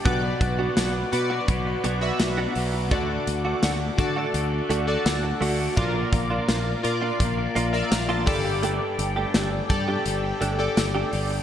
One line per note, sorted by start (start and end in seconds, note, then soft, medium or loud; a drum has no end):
0.00 1.46 B2 loud
0.00 5.73 D5 medium
0.00 11.43 D6 medium
0.05 0.31 B1 loud
0.05 1.09 B2 medium
0.05 1.49 F#3 loud
0.05 0.26 B3 medium
0.05 0.23 D4 medium
0.05 0.93 F#4 medium
0.05 0.22 F#4 medium
0.05 0.93 B4 medium
0.05 2.88 B4 medium
0.05 0.94 D5 loud
0.05 5.73 F#5 medium
0.05 kick loud
0.05 closed hi-hat medium
0.09 1.49 B3 loud
0.23 muted clean electric guitar stroke soft
0.41 0.67 B1 loud
0.41 muted clean electric guitar stroke soft
0.41 kick loud
0.41 closed hi-hat medium
0.59 0.76 B3 medium
0.59 0.75 D4 medium
0.59 0.75 F#4 medium
0.77 1.03 B1 loud
0.77 0.97 B3 medium
0.77 0.94 D4 medium
0.77 0.93 F#4 medium
0.77 snare loud
0.77 closed hi-hat medium
0.77 tambourine medium
0.94 muted clean electric guitar stroke soft
1.12 1.39 B2 loud
1.12 1.86 F#4 medium
1.12 1.86 B4 medium
1.12 1.86 D5 medium
1.12 muted clean electric guitar stroke soft
1.12 closed hi-hat medium
1.30 1.47 B3 medium
1.30 1.47 D4 medium
1.30 1.46 F#4 medium
1.47 1.74 B1 loud
1.47 2.55 B2 medium
1.47 2.58 F#3 medium
1.47 2.53 B3 medium
1.47 muted clean electric guitar stroke medium
1.47 kick medium
1.47 closed hi-hat medium
1.66 muted clean electric guitar stroke soft
1.84 2.10 B1 medium
1.84 2.04 B3 medium
1.84 2.02 D4 medium
1.84 2.01 F#4 loud
1.84 closed hi-hat medium
2.01 2.75 F#4 medium
2.01 2.75 B4 medium
2.01 2.75 E5 medium
2.01 muted clean electric guitar stroke soft
2.20 2.46 B1 medium
2.20 muted clean electric guitar stroke soft
2.20 snare loud
2.20 closed hi-hat loud
2.20 tambourine medium
2.37 2.54 B3 medium
2.37 2.54 D4 medium
2.37 2.55 F#4 medium
2.55 2.91 B1 medium
2.55 2.92 F#3 medium
2.55 2.91 B3 medium
2.55 muted clean electric guitar stroke soft
2.55 open hi-hat medium
2.73 muted clean electric guitar stroke soft
2.89 3.17 D2 loud
2.89 4.33 D3 loud
2.89 3.94 D3 medium
2.89 3.12 A3 medium
2.89 4.34 A3 loud
2.89 3.09 D4 medium
2.89 3.79 F#4 medium
2.89 3.08 F#4 medium
2.89 3.79 A4 medium
2.89 5.74 A4 medium
2.89 3.79 D5 loud
2.89 kick loud
2.89 closed hi-hat medium
2.95 4.36 D4 loud
3.09 muted clean electric guitar stroke soft
3.27 3.53 D2 loud
3.27 muted clean electric guitar stroke soft
3.27 closed hi-hat medium
3.45 3.61 A3 soft
3.45 3.61 D4 medium
3.45 3.61 F#4 medium
3.62 3.89 D2 loud
3.62 3.83 A3 medium
3.62 3.80 D4 medium
3.62 3.79 F#4 loud
3.62 snare loud
3.62 closed hi-hat medium
3.62 tambourine medium
3.80 muted clean electric guitar stroke medium
3.98 4.24 D3 loud
3.98 4.71 F#4 medium
3.98 4.71 A4 medium
3.98 4.72 D5 medium
3.98 muted clean electric guitar stroke soft
3.98 kick medium
3.98 closed hi-hat medium
4.16 4.33 A3 medium
4.16 4.33 D4 medium
4.16 4.32 F#4 medium
4.33 4.60 D2 medium
4.33 5.78 D3 medium
4.33 5.42 A3 medium
4.33 5.40 D4 medium
4.33 muted clean electric guitar stroke soft
4.33 closed hi-hat medium
4.52 muted clean electric guitar stroke soft
4.69 4.96 D2 loud
4.69 4.90 A3 loud
4.69 4.87 D4 loud
4.69 4.86 F#4 loud
4.69 closed hi-hat medium
4.87 5.61 F#4 medium
4.87 5.61 A4 medium
4.87 5.61 D5 loud
4.87 muted clean electric guitar stroke medium
5.06 5.31 D2 loud
5.06 muted clean electric guitar stroke soft
5.06 snare loud
5.06 closed hi-hat loud
5.06 tambourine medium
5.23 muted clean electric guitar stroke soft
5.40 5.67 D2 medium
5.40 5.59 A3 medium
5.40 5.78 A3 medium
5.40 5.76 D4 medium
5.40 5.58 D4 medium
5.40 5.58 F#4 loud
5.40 open hi-hat medium
5.59 5.76 A3 medium
5.59 5.75 D4 medium
5.59 5.75 F#4 medium
5.75 6.03 A#1 loud
5.75 7.18 A#2 loud
5.75 6.80 A#2 medium
5.75 7.20 F3 loud
5.75 5.97 A#3 medium
5.75 5.94 D4 medium
5.75 6.64 F4 medium
5.75 5.94 F4 loud
5.75 6.65 A#4 medium
5.75 8.25 A#4 medium
5.75 8.24 D5 medium
5.75 6.65 D5 loud
5.75 8.25 F5 medium
5.75 kick loud
5.75 closed hi-hat medium
5.80 7.21 A#3 loud
5.95 muted clean electric guitar stroke soft
6.13 6.38 A#1 loud
6.13 muted clean electric guitar stroke soft
6.13 kick loud
6.13 closed hi-hat medium
6.30 6.47 A#3 medium
6.30 6.47 D4 medium
6.30 6.47 F4 medium
6.48 6.74 A#1 loud
6.48 6.69 A#3 medium
6.48 6.66 D4 medium
6.48 6.65 F4 medium
6.48 snare loud
6.48 closed hi-hat medium
6.48 tambourine medium
6.66 muted clean electric guitar stroke soft
6.83 7.10 A#2 loud
6.83 7.57 F4 medium
6.83 7.57 A#4 medium
6.83 7.54 D5 loud
6.83 muted clean electric guitar stroke soft
6.83 closed hi-hat medium
7.02 7.18 A#3 medium
7.02 7.18 D4 medium
7.02 7.18 F4 medium
7.19 7.46 A#1 loud
7.19 8.27 A#2 medium
7.19 8.27 F3 medium
7.19 8.25 A#3 medium
7.19 muted clean electric guitar stroke soft
7.19 kick medium
7.19 closed hi-hat medium
7.38 muted clean electric guitar stroke soft
7.55 7.82 A#1 medium
7.55 7.76 A#3 medium
7.55 7.73 D4 loud
7.55 7.72 F4 loud
7.55 7.72 D5 medium
7.55 closed hi-hat medium
7.73 8.27 F4 medium
7.73 8.27 A#4 medium
7.73 8.26 D5 loud
7.73 7.90 E5 medium
7.73 muted clean electric guitar stroke soft
7.91 8.27 A#1 loud
7.91 8.08 F5 medium
7.91 muted clean electric guitar stroke soft
7.91 snare loud
7.91 closed hi-hat loud
7.91 tambourine medium
8.09 8.27 A#3 medium
8.09 8.26 D4 medium
8.09 8.28 F4 medium
8.09 8.26 A5 medium
8.26 8.79 G1 medium
8.26 9.30 G2 medium
8.26 8.63 D3 medium
8.26 8.62 G3 medium
8.26 9.44 G4 loud
8.26 9.44 A4 medium
8.26 11.43 A4 medium
8.26 9.44 D5 loud
8.26 11.43 D5 medium
8.26 11.43 G5 medium
8.26 8.60 B5 medium
8.26 muted clean electric guitar stroke soft
8.26 kick loud
8.26 open hi-hat medium
8.45 muted clean electric guitar stroke medium
8.61 10.03 G2 loud
8.61 10.06 D3 loud
8.61 8.83 A3 medium
8.61 8.80 D4 medium
8.61 8.79 G4 medium
8.61 closed hi-hat medium
8.66 10.07 G3 loud
8.81 muted clean electric guitar stroke soft
8.99 9.24 G1 loud
8.99 muted clean electric guitar stroke soft
8.99 closed hi-hat medium
9.16 9.33 A3 medium
9.16 9.33 D4 medium
9.16 9.32 G4 medium
9.34 9.60 G1 loud
9.34 9.55 A3 medium
9.34 9.52 D4 medium
9.34 9.51 G4 loud
9.34 snare loud
9.34 closed hi-hat medium
9.34 tambourine medium
9.52 muted clean electric guitar stroke medium
9.69 9.96 G2 loud
9.69 10.43 G4 medium
9.69 10.43 A4 medium
9.69 10.43 D5 loud
9.69 muted clean electric guitar stroke soft
9.69 kick medium
9.69 closed hi-hat medium
9.88 10.04 A3 medium
9.88 10.04 D4 medium
9.88 10.04 G4 medium
10.05 10.31 G1 loud
10.05 11.12 G2 medium
10.05 11.15 D3 medium
10.05 11.10 G3 medium
10.05 muted clean electric guitar stroke soft
10.05 closed hi-hat medium
10.23 muted clean electric guitar stroke soft
10.41 10.67 G1 loud
10.41 10.62 A3 medium
10.41 10.59 D4 medium
10.41 10.58 G4 medium
10.41 closed hi-hat medium
10.59 11.32 G4 medium
10.59 11.32 A4 medium
10.59 11.33 D5 medium
10.59 muted clean electric guitar stroke soft
10.77 11.03 G1 loud
10.77 muted clean electric guitar stroke soft
10.77 snare loud
10.77 closed hi-hat medium
10.77 tambourine medium
10.95 11.12 A3 medium
10.95 11.12 D4 medium
10.95 11.12 G4 medium
11.11 11.39 G1 loud
11.11 11.43 D3 medium
11.11 11.43 G3 medium
11.11 muted clean electric guitar stroke soft
11.11 open hi-hat medium
11.31 muted clean electric guitar stroke soft